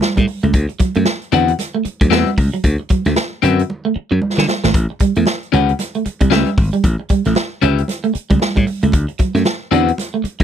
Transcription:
0.01 snare, high conga
0.16 A2 G3, kick, closed hi-hat, high conga
0.27 muted clean electric guitar stroke, open hi-hat
0.43 C#2 A3, closed hi-hat
0.53 D2, kick, closed hi-hat, muted conga
0.69 muted clean electric guitar stroke, closed hi-hat
0.79 F#3, kick, closed hi-hat, muted conga
0.95 F#2 A3, closed hi-hat
1.05 snare, high conga
1.22 closed hi-hat
1.32 E2 C4 D4 F#4 B4 F#5, closed hi-hat, low conga
1.48 closed hi-hat
1.59 snare, closed hi-hat, muted conga
1.75 A3
1.85 muted clean electric guitar stroke, muted slap bass stroke, closed hi-hat, muted conga
2.01 D2 F#3, kick, closed hi-hat
2.10 E2 A3 C4 F#4 B4 E5, snare, high conga
2.26 closed hi-hat, high conga
2.38 C#2, muted clean electric guitar stroke, kick, open hi-hat
2.54 F#3, closed hi-hat
2.64 D2, kick, closed hi-hat, muted conga
2.80 muted clean electric guitar stroke
2.89 F#3, kick, closed hi-hat, muted conga
3.05 D2 A3, snare, closed hi-hat
3.16 snare, high conga
3.42 F#2 C4 F#4 B4 E5, closed hi-hat, low conga
3.59 closed hi-hat
3.70 muted conga
3.85 A3
3.96 muted clean electric guitar stroke, muted slap bass stroke
4.11 F#2 F#3
4.22 high conga
4.37 D3 F#3, snare, high conga
4.48 muted clean electric guitar stroke, snare
4.64 G#1 A3, snare
4.74 A1, kick, closed hi-hat, muted conga
4.90 muted clean electric guitar stroke
5.00 G3, kick, closed hi-hat, muted conga
5.16 E2 A3, closed hi-hat
5.26 snare, high conga
5.43 closed hi-hat
5.52 C#2 C#4 G4 B4 F#5, closed hi-hat, low conga
5.69 closed hi-hat
5.79 snare, closed hi-hat, muted conga
5.94 A3, closed hi-hat
6.05 muted clean electric guitar stroke, muted slap bass stroke, closed hi-hat, muted conga
6.20 C2 G3, kick, closed hi-hat
6.31 C#2 A3 C#4 G4 B4 E5, snare, high conga
6.46 closed hi-hat, high conga
6.57 G#1, muted clean electric guitar stroke, kick, open hi-hat
6.73 G3, closed hi-hat
6.84 A1, kick, closed hi-hat, muted conga
7.00 muted clean electric guitar stroke
7.09 G3, kick, closed hi-hat, muted conga
7.25 A1 A3, snare, closed hi-hat
7.35 snare, high conga
7.62 C#2 C#4 G4 B4 E5, closed hi-hat, low conga
7.78 closed hi-hat
7.88 snare, closed hi-hat, muted conga
8.04 A3, closed hi-hat
8.14 muted clean electric guitar stroke, muted slap bass stroke, closed hi-hat
8.30 C#2 G3, kick, closed hi-hat
8.39 snare, high conga
8.55 A2 G3, kick, closed hi-hat, high conga
8.67 muted clean electric guitar stroke, open hi-hat
8.83 C#2 A3, closed hi-hat
8.92 D2, kick, closed hi-hat, muted conga
9.09 muted clean electric guitar stroke, closed hi-hat
9.19 F#3, kick, closed hi-hat, muted conga
9.35 F#2 A3, snare, closed hi-hat
9.45 snare, high conga
9.71 E2 C4 D4 F#4 B4 F#5, closed hi-hat, low conga
9.88 closed hi-hat
9.98 snare, closed hi-hat, muted conga
10.14 A3
10.24 muted clean electric guitar stroke, muted slap bass stroke, closed hi-hat, muted conga
10.40 D2 F#3, kick, closed hi-hat

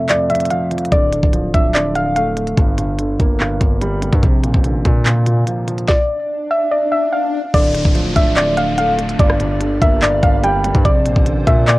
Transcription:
Already playing: F2 C3 A3
0.09 F2 D5, clap, closed hi-hat
0.30 F2 E5, closed hi-hat
0.35 closed hi-hat
0.40 closed hi-hat
0.46 closed hi-hat
0.51 F3 F5, closed hi-hat
0.71 F3, closed hi-hat
0.78 closed hi-hat
0.85 closed hi-hat
0.92 D1 D3 D5, kick, closed hi-hat
1.13 D3, closed hi-hat
1.23 D1, kick
1.33 F3, closed hi-hat
1.54 D1 D4 E5, kick, closed hi-hat
1.75 D3 D5, clap, closed hi-hat
1.95 D3 F5, closed hi-hat
2.16 A3 F5, closed hi-hat
2.37 A3, closed hi-hat
2.47 closed hi-hat
2.57 G1 G2, kick, closed hi-hat
2.78 G2, closed hi-hat
2.99 D3, closed hi-hat
3.19 G1 A#3, kick, closed hi-hat
3.40 G2, clap, closed hi-hat
3.61 G1 G2, kick, closed hi-hat
3.81 G3, closed hi-hat
4.02 G3, closed hi-hat
4.13 G2, kick, closed hi-hat
4.23 A#1 C3, kick, closed hi-hat
4.44 A#2, closed hi-hat
4.54 A1, kick
4.64 D3, closed hi-hat
4.85 A#2 A#3, kick, closed hi-hat
5.06 A#2, clap, closed hi-hat
5.26 A#2, closed hi-hat
5.47 F3, closed hi-hat
5.68 F3, closed hi-hat
5.78 closed hi-hat
5.88 D5, kick, snare, swell
6.51 E5
6.71 D5
6.92 E5
7.13 F5
7.54 D1 D3 A3 D4 F4 D5, kick, closed hi-hat, crash, downlifter
7.75 D3, closed hi-hat
7.85 D1, kick
7.95 F3, closed hi-hat
8.16 D1 D4 E5, kick, closed hi-hat
8.37 D3 D5, clap, closed hi-hat
8.57 D3 F5, closed hi-hat
8.78 A3 F5, closed hi-hat
8.99 A3, closed hi-hat
9.09 closed hi-hat
9.19 G1 G2 A#3 G4 D5, kick, closed hi-hat
9.30 cross-stick
9.40 G2, closed hi-hat
9.61 D3, closed hi-hat
9.81 G1 A#3 E5, kick, closed hi-hat
10.02 G2 D5, clap, closed hi-hat
10.23 G1 G2 F5, kick, closed hi-hat
10.44 G3 G5, closed hi-hat
10.64 G3, closed hi-hat
10.75 G2, kick, closed hi-hat
10.85 A#1 C3 F4 C5 D5, kick, closed hi-hat
11.06 A#2, closed hi-hat
11.16 A1, kick
11.26 D3, closed hi-hat
11.47 A#2 A#3 E5, kick, closed hi-hat
11.68 A#2 D5, clap, closed hi-hat

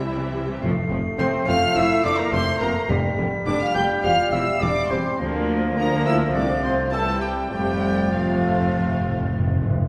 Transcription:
Already playing: C2 C3 E3 E4 E5
0.06 E3 G3 E4
0.19 E3 G3 C4 G4
0.33 E3 G3 E4
0.47 E3 G3 C4 G4
0.61 F1 F2 F3 A3 C4 F4 C7
0.90 F1 F2 F3 A3 C4 F4
1.18 F1 F2 F3 A3 C4 F4 C5 C6
1.46 F1 F2 F3 A3 C4 F4 F5 F6
1.75 F1 F2 F3 A3 C4 E4 F4 E5 E6
2.04 F1 F2 F3 A3 C4 D4 F4 D5 D6
2.19 A#3 A#4 A#5
2.32 F1 F2 F3 A3 C4 F4 C5 C6
2.60 F1 F2 F3 A3 A#3 C4 F4 A#4 A#5
2.89 F1 F2 D3 G3 B3 G4 B6
3.18 F1 F2 D3 G3 B3 G4
3.45 F1 F2 D3 G3 B3 D4 G4 D5 D6
3.60 F4 F5 F6
3.74 F1 F2 D3 G3 B3 G4 G5 G6
4.03 E1 E2 E3 G3 C4 F4 G4 F5 F6 C7
4.32 E1 E2 E3 G3 C4 E4 G4 E5 E6
4.60 E1 E2 E3 G3 C4 D4 G4 D5 D6
4.90 E1 E2 E3 G3 C4 G4 C5 C6
5.18 D2 F3 A#3 D4 F4 A#6
5.76 F3 A#3 D4 F4 A#4 A#5
6.05 E4 E5 E6
6.33 C2 C3 A3 C4 D4 F4 D5 D6 A6
6.63 C4 C5 C6
6.92 C3 E3 G3 A3 C4 E4 A4 A5 G6
7.21 G3 G4 G5
7.50 F1 F2 C3 F3 G3 A3 C4 F4 G4 G5 A6
7.59 F2
7.67 F2
7.75 F2
7.82 F2
7.90 F2
7.98 F2
8.06 F2
8.11 F2 C3 F3 A3 C4 F4 F5
8.22 F2
8.30 F2
8.38 F2
8.46 F2
8.54 F2
8.61 F2
8.69 F2
8.77 F2
8.85 F2
8.93 F2
9.01 F2
9.08 F2
9.15 F2
9.23 F2
9.32 F2
9.39 F2
9.47 F2
9.55 F2
9.62 F2
9.70 F2
9.78 F2

